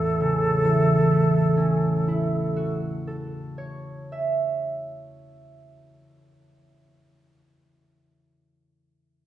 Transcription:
Already playing: A1 E2 A2 C#4 E4 F#4 A4
0.20 C#3
0.64 E3
1.11 A3
1.57 C#4
2.08 E4
2.56 F#4
3.07 A4
3.58 C#5
4.12 E5

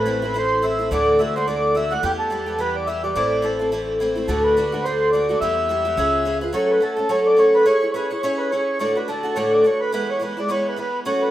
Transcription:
Already playing: A1 B4
0.06 E3 A3 C4 E4
0.22 A3 C4 E4
0.34 E3 A3 C4 E4 C5
0.62 E3 A3 C4 E4 E5
0.79 A3 C4 E4
0.91 D2 A2 E3 A3 D4 F#4 D5
1.19 E3 A3 D4 F#4 E5
1.36 E3 A3 D4 F#4 C5
1.47 E3 A3 D4 F#4 D5
1.75 E3 A3 D4 F#4 E5
1.91 E3 A3 D4 F#4 F#5
2.03 E2 E3 G3 B3 G4
2.19 A4
2.30 E3 G3 B3 G4
2.46 G3 B3 G4
2.59 E3 G3 B3 G4 B4
2.76 D5
2.87 E3 G3 B3 G4 E5
3.04 G3 B3 G4 D5
3.15 A1 A2 E3 A3 C4 E4 D5
3.42 E3 A3 C4 E4 A4
3.59 A3 C4 E4
3.72 E3 A3 C4 E4
4.00 E3 A3 C4 E4
4.16 A3 C4 E4
4.28 D2 A2 D3 A3 D4 F#4 A4
4.44 B4
4.57 D3 A3 D4 F#4
4.72 D3 A3 D4 F#4
4.84 D3 A3 D4 F#4 C5
5.13 D3 A3 D4 F#4 D5
5.29 D3 A3 D4 F#4
5.41 E2 E3 G3 B3 G4 E5
5.69 E3 G3 B3 G4
5.85 G3 B3 G4
5.97 C#2 C#4 F4 G#4 B4
6.25 C#4 F4 G#4 B4
6.41 F4 G#4 B4
6.53 F#3 A3 C#4 A4 C#5
6.71 B4
6.80 F#3 A3 C#4 A4
6.97 A3 C#4 A4
7.09 F#3 A3 C#4 A4 C#5
7.27 D5
7.37 F#3 A3 C#4 A4 C#5
7.55 B4
7.66 C#4 E4 G#4 C#5
7.81 E4 G#4 C#5
7.92 C#4 E4 G#4 B4 C#5
7.96 C#5
8.11 E4 G#4 C#5
8.23 C#4 E4 G#4 C#5
8.38 B4
8.51 C#4 E4 G#4 C#5
8.79 D2 A2 D3 A3 D4 F#4 C#5
8.95 D3 A3 D4 F#4 B4
9.08 D3 A3 D4 F#4 A4
9.23 D3 A3 D4 F#4
9.35 D2 A2 D3 A3 D4 F#4 C#5
9.53 D5
9.64 D3 A3 D4 F#4 C#5
9.81 B4
9.92 E3 G#3 B3 E4 B4
10.10 C#5
10.20 E3 G#3 B3 E4
10.24 B4
10.37 G#3 B3 E4 D5
10.48 E3 G#3 B3 E4 C#5
10.69 B4
10.76 E3 G#3 B3 E4 B4
11.05 F#3 A3 C#4 F#4 C#5
11.22 B4

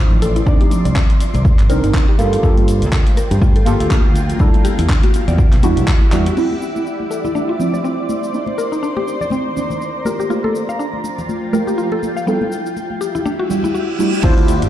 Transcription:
Already playing: F3 D4 E4 F4 C5 D5 C6
0.11 A1, muted conga
0.22 A4, open hi-hat, high conga, shaker
0.36 E4, closed hi-hat, shaker
0.46 D#3 C4 D4 D#4 D5, kick, muted conga, shaker
0.60 G4, closed hi-hat, high conga
0.65 C5
0.71 open hi-hat, muted conga, shaker
0.85 C2 D5, closed hi-hat, shaker
0.96 C4, kick, clap, shaker
1.10 closed hi-hat, muted conga, high conga
1.20 open hi-hat, shaker
1.34 C2, open hi-hat, muted conga, low conga, shaker
1.45 kick, high conga, shaker
1.59 G1, clap, closed hi-hat
1.69 C2 C4 D4 D#4 A#4, open hi-hat, muted conga, low conga, shaker
1.84 G1 D#4, closed hi-hat, high conga, shaker
1.94 D4, kick, clap, muted conga, shaker
2.08 G4
2.18 G2 A#3 F4 G4 A4, open hi-hat, high conga, shaker
2.33 F5, closed hi-hat, muted conga, shaker
2.42 G2 A#3 D4 F4 G4 A4, kick, shaker
2.48 G5
2.57 closed hi-hat, muted conga, high conga
2.68 open hi-hat, shaker
2.75 A#3
2.82 D2, closed hi-hat, shaker
2.92 kick, clap, muted conga, shaker
3.07 closed hi-hat, high conga
3.16 A#4, open hi-hat, muted conga, shaker
3.31 G2 G4, closed hi-hat, low conga, shaker
3.42 F4, kick, high conga, shaker
3.55 A4, closed hi-hat, muted conga
3.65 G1 A#3 F4 G4 A4, open hi-hat, shaker
3.80 D2 F5, closed hi-hat, muted conga, high conga, shaker
3.91 D4, kick, clap, shaker
4.05 D2
4.15 open hi-hat, muted conga, high conga, shaker
4.30 closed hi-hat, shaker
4.39 G3 D4 E4 A4, kick, muted conga, shaker
4.54 closed hi-hat, high conga
4.65 G4, open hi-hat, shaker
4.78 E2 E4 G4, closed hi-hat, muted conga, shaker
4.89 D4, kick, clap, shaker
5.02 F#4, closed hi-hat, muted conga, high conga
5.14 open hi-hat, shaker
5.28 E2 D5, open hi-hat, low conga, shaker
5.38 B3, kick, muted conga, high conga, shaker
5.53 B1, clap, closed hi-hat
5.63 E2 G3 D4 E4 F#4, open hi-hat, muted conga, low conga, shaker
5.77 B1, closed hi-hat, high conga, low conga, shaker
5.88 kick, clap, shaker
6.01 muted conga
6.12 E2 G3 B3 D4 E4 F#4, clap, open hi-hat, high conga, shaker
6.26 E4, closed hi-hat, muted conga, shaker
6.36 F3 C4 D4 E4, crash, muted conga, shaker
6.51 high conga
6.62 shaker
6.76 muted conga, shaker
6.87 shaker
6.92 C5
7.00 high conga
7.11 A4, shaker
7.24 E4, muted conga, low conga, shaker
7.35 D4, high conga, shaker
7.49 F4
7.59 F3 C4 D4 E4, muted conga, shaker
7.74 D5, high conga, shaker
7.84 C4, shaker
8.09 muted conga, high conga, shaker
8.23 shaker
8.33 D#3 A#3 C4 D4 D#4, shaker
8.46 muted conga, high conga
8.58 A#4, shaker
8.72 D#4, shaker
8.83 D4, shaker
8.97 G4, muted conga, high conga
9.08 A#5, shaker
9.21 D5, low conga, shaker
9.30 C4, muted conga, high conga, shaker
9.56 A#3 C4 D4 D#4, low conga, shaker
9.70 high conga, low conga, shaker
9.81 muted conga, shaker
10.05 A3 A#3 F4 G4 A#4, high conga, shaker
10.19 G4, muted conga, shaker
10.29 A3 A#3 F4 G4, shaker
10.44 A4, high conga
10.55 shaker
10.69 F5 G5, muted conga, shaker
10.79 D4, shaker
10.93 high conga
11.04 muted conga, shaker
11.18 low conga, shaker
11.29 high conga, shaker
11.52 A3 A#3 F4 G4 A#4, muted conga, shaker
11.67 G4, high conga, shaker
11.78 F4, shaker
11.92 A4, muted conga
12.03 high conga, shaker
12.17 F5, shaker
12.26 G3 B3 D4 E4 A4, shaker
12.39 G4, muted conga, high conga
12.52 shaker
12.66 shaker
12.77 muted conga, shaker
12.90 high conga
12.99 G4 F#5, shaker
13.15 E4 D5, low conga, shaker
13.25 D4, reverse cymbal, muted conga, high conga, shaker
13.39 F#4
13.49 G3 D4 E4 F#4, low conga, shaker
13.63 E4, muted conga, high conga, low conga, shaker
13.74 F#4, shaker
13.99 G3 D4 E4 F#4, high conga, shaker
14.13 muted conga, shaker
14.23 D2 C4 D4 E4 F4 C5, kick, crash, muted conga, shaker
14.37 closed hi-hat, high conga
14.48 open hi-hat, shaker
14.62 A1, closed hi-hat, muted conga, shaker

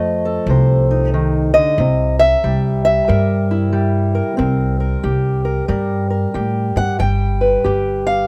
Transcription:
Already playing: F2 F3 A3 D#5
0.25 A4
0.47 C2 C3 C5
0.91 D#4
1.14 D#3
1.54 D3 D#5
1.78 C2 C3
2.19 E5
2.44 C2 G3
2.85 E5
3.08 G2 G3 A#4
3.51 E4
3.73 G3
4.15 A#4
4.37 C2 C4 A#4
4.80 A#4
5.03 C2 G4
5.45 A#4
5.68 G2 G3 A#4
6.10 A#4
6.34 A2 G4
6.76 G2 F#5
6.99 G1 G3 G5
7.41 B4
7.64 G1 G4
8.07 F5

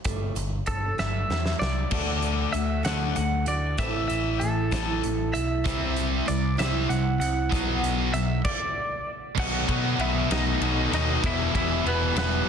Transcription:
0.04 G1 G3 A3 D4, kick, closed hi-hat
0.35 G1 G3 A3, closed hi-hat
0.66 G1 A4, kick, closed hi-hat
0.98 G1 G3 A3 D4 E5, snare
1.30 E2 G3 A3, snare
1.46 snare
1.59 C2 G3 A3 D5, snare
1.91 D2 D3 A3 D4 F#4, kick, crash
2.22 closed hi-hat
2.53 D2 D3 A3 D4 E5, closed hi-hat
2.57 F#4
2.83 D2 D3 A3 D4 F#4 F#5, snare, closed hi-hat
2.87 A3
3.16 D2 D3 A3 F#5, closed hi-hat
3.46 D2 D4 F#4 D5, closed hi-hat
3.50 A3
3.77 A1 A2 E3 A3 C4 E4 E5, kick, closed hi-hat
4.08 A1 E5, closed hi-hat
4.40 A1 A2 E3 A3 C4 E4 A4, closed hi-hat
4.71 A1 A2 E3 A3 C4 E4, kick, snare, closed hi-hat
5.02 A1 A2 E3, closed hi-hat
5.33 B1 A3 C4 E4 E5, closed hi-hat
5.64 C2 C3 G3 C4 E4, kick, closed hi-hat
5.96 closed hi-hat
6.26 C2 C3 G3 C4 E4 D5, closed hi-hat
6.57 C2 C3 G3 C4 E4 E5, snare, closed hi-hat
6.89 C2 C3 G3 F#5, closed hi-hat
7.20 C2 C4 E4 F#5, closed hi-hat
7.24 G3
7.51 B1 B2 F#3 B3, kick, closed hi-hat
7.55 D4
7.83 B1, closed hi-hat
8.14 B1 B2 F#3 B3 E5, closed hi-hat
8.18 D4
8.45 D5, kick, crash
9.36 B1 B2 D#3 F#3 B3 D#4 F#4 A4 F#5 A5 B5 D#6, kick, crash
9.67 B2 D#3 F#3 B3 D#4, kick, ride
9.98 B1 B2 D#3 F#3 B3 D#4 E4 E5, ride
10.29 B1 B2 D#3 F#3 B3 D#4 D#5, snare, ride
10.59 B1 B2 D#3 D#4, ride
10.63 B2 F#3 B3
10.90 D#2 B2 D#3 F#3 D#4, ride
10.94 B2 F#3 B3 D#4 D#5
11.22 E1 E3 G3 B3 E4 G4 E6, kick, ride
11.26 E2 B2 E3 E5
11.53 E1 E3 G3 B3 E4 E5, kick, ride
11.57 E2 B2 E3
11.85 E1 E2 B2 E3 G3 B3 E4 B4, ride
12.16 E1 E2 B2 E3 G3 B3 E4 B4, snare, ride
12.46 E3

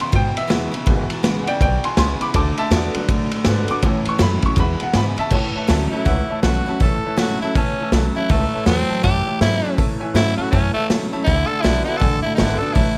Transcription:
Already playing: E3 G#3 B3 E4
0.00 E2 C#3 B3 C6
0.12 E2 G#2 B2 G5, kick, ride
0.35 E2 B2 E5, muted upright bass stroke, ride
0.48 E2 C#3 E3 G#3 B3 E4, snare, ride
0.52 G#3 B3
0.71 E2 C#3 B3 E4, muted upright bass stroke, ride
0.86 G#1 E2 B2 E3 G#3 B3, kick, ride
1.10 E2 B2, muted upright bass stroke, ride
1.23 A1 E2 C#3 E3 G#3 B3 E4, snare, ride
1.44 E4 F#5, muted upright bass stroke, ride
1.48 E2 C#3 B3 D5 G5
1.61 B1 E2 B2 D5 G5, kick, ride
1.84 E2 B2 G#5 C6, ride
1.97 C#2 E2 C#3 E3 G#3 B3 E4 G#5 C6, snare, ride
2.21 E2 C#3 B3 E4 B5 D6, ride
2.34 D2 D3 A3 A5 D6, kick, ride
2.58 D3 A3 E5 A5, ride
2.71 E2 D3 A3 B3 D4 F#4, snare, ride
2.94 D3 F#3 A3 B3 D4 F#4, muted upright bass stroke, ride
3.08 F#2 A2 D3 A3, kick, ride
3.31 D3 A3, muted upright bass stroke, ride
3.45 G#2 D3 A3 B3 D4 F#4, snare, ride
3.68 D3 B3 D4 F#4 D6, muted upright bass stroke, ride
3.82 A2 E3 A3 C#4, kick, ride
4.05 A2 E3 C#6, muted upright bass stroke, ride
4.19 F#2 A2 E3 F#3 A3 C#4 E4 B5, snare, ride
4.42 A2 F#3 C#4 E4 C#6, kick, ride
4.56 E2 B2 E3 G#3 B3 B5, kick, ride
4.80 E2 B2 F#5, muted upright bass stroke, ride
4.93 E2 G#2 C#3 E3 G#3 B3 E4 B5, snare, ride
5.17 E2 C#3 B3 E4 E5 A5, muted upright bass stroke, ride
5.30 A2 E3 C#5 E5 A5, kick, crash
5.55 A2 E3 C#5 E5 A5, muted upright bass stroke
5.67 D2 A2 E3 F#3 A3 C#4 E4 C#5 E5 A5, snare, open hi-hat
5.91 A2 F#3 C#4 E4 C#5 E5 A5
6.05 C#2 E2 A2 E3 C#5 E5 F#5, kick, open hi-hat
6.30 A2 E3 C#5 E5 A5
6.42 B1 A2 E3 F#3 A3 C#4 E4 F#4 C#5 E5 A5, snare, open hi-hat
6.66 A2 F#3 C#4 E4 C#5 E5 A5, muted upright bass stroke
6.80 A1 A2 E3 A4 C#5 E5 A5, kick, open hi-hat
7.04 A2 E3 C#5 E5 A5, muted upright bass stroke
7.17 G#1 A2 E3 F#3 A3 C#4 E4 F#4 C#5, snare, open hi-hat
7.21 E5 A5
7.41 A2 F#3 C#4 E4 C#5 E5 A5, muted upright bass stroke
7.55 A1 E2 A2 E3 C#4 C#5 E5 A5, kick, open hi-hat
7.78 A2 E3 C#5 E5, muted upright bass stroke
7.82 A5
7.92 B1 A2 E3 F#3 A3 C#4 E4 C#5 E5 A5, snare, open hi-hat
8.15 A2 F#3 C#4 E4 C#5 E5 A5
8.29 C#2 A2 E3 A3 C#5 E5 A5, kick, open hi-hat
8.53 A2 E3 C#5 E5 A5, muted upright bass stroke
8.66 E2 A2 E3 F#3 A3 C4 E4 C#5 E5 G#5, snare, open hi-hat
8.89 A2 F#3 C#5 E5 A5, muted upright bass stroke
9.03 E2 F#2 A2 E3 G4 C#5 E5 A5, kick, open hi-hat
9.26 A2 E3 C#5 E5 A5, muted upright bass stroke
9.40 G#2 A2 E3 F#3 A3 C#4 E4 C#5 E5 B5, snare, open hi-hat
9.64 A2 F#3 C#4 E4 C#5 E5 G#5, muted upright bass stroke
9.76 A2 E3 C#5 E5 A5, kick, open hi-hat
10.00 A2 E3 C#5 E5 G#5, muted upright bass stroke
10.13 G#2 A2 E3 F#3 A3 C#4 E4 C#5 E5 F#5, snare, open hi-hat
10.37 A2 F#3 C#4 E4 F#4 C#5 E5 A5, muted upright bass stroke
10.51 E2 F#2 A2 E3 C#4 C#5 E5 A5, kick, open hi-hat
10.74 A2 E3 A3 C#5 E5 A5, muted upright bass stroke
10.88 E2 A2 E3 F#3 A3 C#4 E4 C#5 E5 A5, snare, open hi-hat
11.12 A2 F#3 C#4 E4 C#5 E5 A5, muted upright bass stroke
11.24 D2 D3 A3 E4 D5 F#5 A5, kick, open hi-hat
11.47 D3 A3 A4 D5 F#5 A5, muted upright bass stroke
11.61 B1 D3 A3 B3 D4 E4 F#4 D5 F#5 A5, snare, open hi-hat
11.85 D3 B3 D4 E4 F#4 D5 F#5 A5
11.97 A2 A4 D5 F#5 G#5
12.01 A1 D3 A3, kick, open hi-hat
12.22 D3 A3 E4 D5 F#5 A5, muted upright bass stroke
12.35 D3 A3 D4 E4 F#4 D5 F#5 A5, snare, open hi-hat
12.39 G#1 B3
12.59 D3 B3 D4 F#4 A4 D5 F#5 A5, muted upright bass stroke
12.73 A1 A2 E3 E4 C#5 E5 A5, kick, open hi-hat

